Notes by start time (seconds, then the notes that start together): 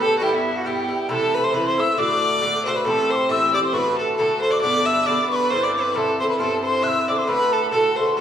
0.02 D3 B3 G4 A4 A5
0.18 G2 G3 B3 E4 F#4
0.23 G4 G5
0.34 E4 E5
0.56 F#4 F#5
0.65 G2 G3 B3 E4 G4 G5
0.89 G3 B3 E4
1.09 C3 E3 A3 E4 A4 B5
1.14 A5
1.34 B4 B5
1.43 C5 C6
1.52 C3 E3 A3 E4 B4 B5
1.67 C5 C6
1.77 E3 A3 E4 E5 E6
1.91 E5
1.97 A2 D3 A3 F#4 D5 D6
2.41 A2 D3 A3 F#4
2.65 D3 A3 F#4 C5 C6
2.76 B4 B5
2.85 A2 E3 C4 G4 A4 B5
2.91 A5
3.10 C5 D6
3.16 C6
3.29 A2 E3 C4 G4 E5 E6
3.54 E3 C4 G4 D5 D6
3.64 C5 C6
3.73 A2 D3 A3 F#4 B4 C#6
3.79 B5
3.98 A4 A5
4.16 A2 D3 A3 F#4 A4 B5
4.22 A5
4.41 C5 C6
4.51 D5 D6
4.62 G2 D3 B3 D4 D5 D6
4.86 E5 E6
5.06 G2 D3 B3 D4 D5 D6
5.30 B4 C#6
5.36 B5
5.50 G2 D3 C4 E4 C5 C6
5.63 D5 D6
5.75 B4
5.94 G2 D3 C4 E4 A4 B5
5.98 A5
6.20 D3 C4 E4 C5 C6
6.30 B4 B5
6.39 G2 D3 C4 E4 A4 A5
6.64 C5 C6
6.83 G2 D3 C4 E4 E5 F#6
6.88 E6
7.08 D3 C4 E4 D5 D6
7.18 C5 C6
7.27 A2 D3 A3 F#4 B4 B5
7.52 A4 A5
7.71 A2 D3 A3 F#4 A4 A5
7.96 D3 A3 F#4 C5 C6
8.06 B4
8.15 G2 E3 A4 A5